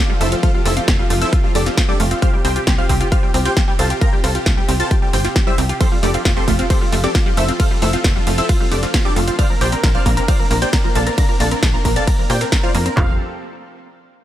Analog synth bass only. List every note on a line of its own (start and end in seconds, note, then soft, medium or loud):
0.21 0.36 F1 medium
0.66 0.81 F1 loud
0.88 1.03 F1 medium
1.10 1.25 F1 medium
1.55 1.70 F1 medium
2.00 2.15 F1 medium
2.45 2.60 C2 loud
2.67 2.82 C2 medium
2.89 3.04 C2 medium
3.34 3.49 C2 medium
3.79 3.94 C2 medium
4.24 4.39 C2 loud
4.46 4.61 C2 medium
4.69 4.84 C2 medium
5.13 5.28 G1 medium
5.58 5.73 C2 loud
6.03 6.18 F1 loud
6.25 6.40 F1 medium
6.48 6.63 F1 medium
6.92 7.07 F1 medium
7.37 7.52 F1 medium
7.82 7.97 F1 loud
8.04 8.19 F1 medium
8.27 8.42 F1 medium
8.72 8.87 F1 medium
9.16 9.31 F1 medium
9.61 9.76 A#1 loud
9.84 9.99 A#1 medium
10.06 10.21 A#1 medium
10.51 10.66 A#1 medium
10.95 11.10 A#1 medium
11.40 11.55 A#1 loud
11.63 11.78 A#1 medium
11.85 12.00 A#1 medium
12.30 12.45 A#2 medium
12.75 12.90 F2 medium
12.97 13.18 F1 loud